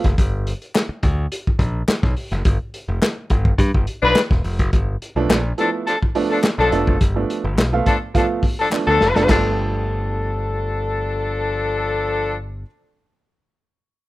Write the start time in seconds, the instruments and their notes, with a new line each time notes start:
0.04 picked electric bass F#1, kick, snare, closed hi-hat
0.18 picked electric bass G1, kick, closed hi-hat
0.47 closed hi-hat
0.62 closed hi-hat
0.75 snare, clap, closed hi-hat
0.89 muted picked electric bass stroke
1.03 picked electric bass D2, kick, closed hi-hat
1.32 closed hi-hat
1.47 kick
1.59 picked electric bass A#1, kick, closed hi-hat
1.88 snare, clap, closed hi-hat
2.03 picked electric bass B1, kick, snare
2.17 open hi-hat
2.31 picked electric bass F#1, snare, closed hi-hat
2.45 picked electric bass G1, kick, closed hi-hat
2.74 closed hi-hat
2.88 picked electric bass F1
3.02 snare, clap, closed hi-hat
3.30 picked electric bass G1, kick, closed hi-hat
3.45 kick
3.58 picked electric bass G2, kick, closed hi-hat
3.74 picked electric bass G1, kick
3.87 closed hi-hat
4.02 picked electric bass B1, horn section F3 D4 B4
4.15 snare, clap, closed hi-hat
4.30 picked electric bass E1, kick, snare
4.44 picked electric bass F1, open hi-hat
4.59 picked electric bass F#1, kick, snare, closed hi-hat
4.73 picked electric bass G1, kick, closed hi-hat
5.02 closed hi-hat
5.16 picked electric bass B1, upright piano F3 A3 B3 D4
5.29 picked electric bass A#1, snare, clap, closed hi-hat
5.58 upright piano F3 A3 B3 E4, horn section F3 D4 A4, closed hi-hat
5.86 horn section F3 D4 A4, closed hi-hat
6.03 kick
6.15 upright piano F3 A3 B3 D4, open hi-hat
6.30 horn section F3 D4 A4
6.43 snare, clap, closed hi-hat
6.58 picked electric bass B1, horn section F3 D4 A4, snare
6.72 picked electric bass F1, upright piano F3 A3 B3 D4, closed hi-hat
6.87 picked electric bass F#1, kick
7.01 picked electric bass G1, kick, closed hi-hat
7.16 upright piano F3 A3 B3 D4
7.30 closed hi-hat
7.44 picked electric bass G1
7.58 picked electric bass B1, snare, clap, closed hi-hat
7.73 upright piano F3 A3 B3 F4
7.86 horn section F3 D4 A4, kick, closed hi-hat
8.14 upright piano F3 A3 B3 F4, horn section F3 D4 A4, kick, closed hi-hat
8.43 kick, open hi-hat
8.59 horn section F3 D4 A4
8.72 upright piano F3 A3 B3 D4, snare, clap
8.87 picked electric bass D2, horn section F3 D4 A4
9.01 picked electric bass F1, snare
9.15 picked electric bass F#1, upright piano F3 A3 B3 D4, snare
9.27 picked electric bass G1, upright piano F3 A3 B3, horn section F3 D4 A4, kick, snare, clap, crash
9.31 upright piano D4